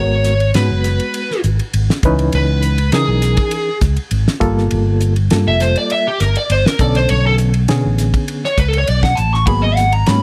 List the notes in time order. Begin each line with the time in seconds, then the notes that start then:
Already playing: G#1 G#3 B3 F#4 A#4 C#5
0.24 snare, hi-hat pedal, ride
0.40 ride
0.54 G#2 G#3 B3 F#4 B4, snare, ride
0.70 F#1
0.84 snare, hi-hat pedal, ride
1.00 ride
1.14 ride
1.31 snare
1.44 G#1, hi-hat pedal, ride
1.59 ride
1.74 G#1, ride
1.90 snare
2.03 C#2 E3 C#4 D#4 B4, kick, hi-hat pedal, ride
2.19 ride
2.32 C#2 B4, ride
2.62 hi-hat pedal, ride
2.78 ride
2.92 C#3 E3 C#4 D#4 G#4 A#4, snare, ride
3.07 B1
3.22 snare, hi-hat pedal, ride
3.37 kick, ride
3.51 ride
3.81 C#2, kick, snare, hi-hat pedal, ride
3.97 ride
4.11 G#1, ride
4.28 snare
4.40 G1 G3 A#3 F4 A4, kick, hi-hat pedal, ride
4.58 snare
4.71 G1, ride
5.01 hi-hat pedal, ride
5.16 ride
5.30 G2 G3 A#3 F4 A4, snare, ride
5.46 F1 E5
5.60 C5, snare, hi-hat pedal, ride
5.76 D5, ride
5.90 E5, ride
6.07 G4
6.20 G1 A#4, snare, hi-hat pedal, ride
6.35 D5, ride
6.49 G1 C5, ride
6.66 A#4, snare
6.79 B1 D3 B3 C#4 A4 D5, kick, hi-hat pedal, ride
6.95 C5, snare, ride
7.09 B1 C#5, ride
7.26 A4
7.38 hi-hat pedal, ride
7.54 ride
7.68 B2 D3 B3 C#4 G#4, snare, ride
7.85 A1
7.98 snare, hi-hat pedal, ride
8.14 kick, ride
8.28 ride
8.44 C#5, snare
8.58 C#2 B4, kick, hi-hat pedal, ride
8.68 A4
8.73 ride
8.78 C#5
8.87 B1 D5, ride
9.03 F#5, kick, snare
9.16 A1 A5, hi-hat pedal, ride
9.34 C#6, snare
9.47 G#1 F#3 A#3 B3 G#4 B5, kick, ride
9.62 D#5
9.75 F#5, snare, hi-hat pedal, ride
9.92 A#5, ride
10.06 G#2 F#3 A#3 B3 C#4 B5, snare, ride